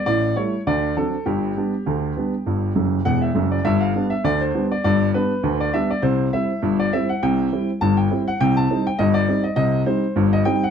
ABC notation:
X:1
M:2/4
L:1/16
Q:"Swing 16ths" 1/4=101
K:G
V:1 name="Grand piano"
d2 ^c2 d2 A2 | G8- | G4 f e2 d | e =f2 e d c2 d |
d2 B3 d e d | c2 e3 d e f | g4 a g2 f | g a2 g _e d2 e |
_e2 c3 e g f |]
V:2 name="Grand piano" clef=bass
[A,,,A,,]2 [G,A,E]2 [D,,D,]2 [F,CD]2 | [G,,,G,,]2 [G,B,D]2 [D,,D,]2 [G,B,D]2 | [G,,,G,,]2 [F,,,F,,]2 [E,,,E,,]2 [F,,,F,,]2 | [G,,,G,,]2 [G,B,D]2 [D,,D,]2 [G,B,D]2 |
[G,,,G,,]2 [G,B,D]2 [D,,D,]2 [G,B,D]2 | [C,,C,]2 [G,CE]2 [G,,,G,,]2 [G,CE]2 | [C,,C,]2 [G,CE]2 [G,,,G,,]2 [G,CE]2 | [C,,C,]2 [G,C_E]2 [G,,,G,,]2 [G,CE]2 |
[C,,C,]2 [G,C_E]2 [G,,,G,,]2 [G,CE]2 |]